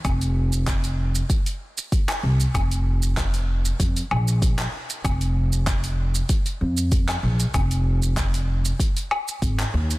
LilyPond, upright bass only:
\new Staff \with { instrumentName = "Upright bass" } { \clef bass \time 4/4 \key f \minor \tempo 4 = 96 f,,2 r4. c,8 | f,,2 f,8 bes,,4 r8 | f,,2 r8 f,4 bes,,8 | f,,2 r4 aes,,8 ees,8 | }